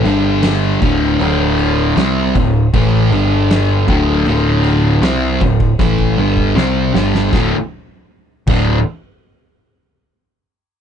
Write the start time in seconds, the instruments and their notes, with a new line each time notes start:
0.04 picked electric bass G1, distorted electric guitar G2 D3 G3, crash
0.43 snare, crash
0.81 picked electric bass D1, distorted electric guitar D2 A2 D3, kick, crash
1.19 picked electric bass D1, distorted electric guitar D2 A2 D3, crash
1.59 crash
1.96 picked electric bass C2, distorted electric guitar C3 G3 C4, snare, crash
2.35 picked electric bass D1, distorted electric guitar D2 A2, kick, crash
2.73 picked electric bass A1, distorted electric guitar A2 E3 A3, kick, crash
3.11 picked electric bass G1, distorted electric guitar G2 D3 G3, crash
3.51 snare, crash
3.88 picked electric bass D1, distorted electric guitar D2 A2 D3, kick, crash
4.25 picked electric bass D1, distorted electric guitar D2 A2 D3, crash
4.64 crash
5.02 picked electric bass C2, distorted electric guitar C3 G3 C4, snare, crash
5.41 picked electric bass D1, distorted electric guitar D2 A2, kick, crash
5.60 kick
5.79 picked electric bass A1, distorted electric guitar A2 E3 A3, kick, snare
5.98 kick
6.17 picked electric bass G1, distorted electric guitar G2 D3 G3
6.37 kick
6.56 picked electric bass C2, distorted electric guitar C3 G3 C4, snare
6.94 picked electric bass G1, distorted electric guitar G2 D3 G3, snare
7.15 snare
7.32 picked electric bass D1, distorted electric guitar D2 A2 D3, kick, snare
8.47 picked electric bass D1, distorted electric guitar D2 A2 D3, kick, crash